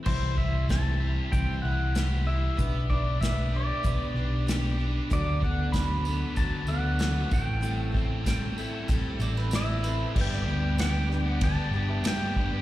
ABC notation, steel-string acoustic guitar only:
X:1
M:4/4
L:1/8
Q:1/4=95
K:G
V:1 name="Steel-string acoustic guitar"
[C,E,G,E] G, [E,G,E] [G,E] [C,E,G,E] [G,E] [E,G,E] [G,E] | [B,DGB] [DGB] [B,DGB] [DGB] [B,DGB] [DGB] [B,DGB] [DGB] | [D,F,B,DA] [B,DA] [F,B,DA] [B,DA] [D,F,B,DA] [B,DA] [F,B,DA] [CEA] | [A,,G,CEA] [CEA] [G,CEA] [CEA] [A,,G,CEA] [CEA] [G,CEA] [CEA] |
[G,,D,G,B,DG] [G,B,DG] [G,B,DG] [G,B,DG] [G,,D,G,B,DG] [G,B,DG] [G,B,DG] [G,B,DG] |]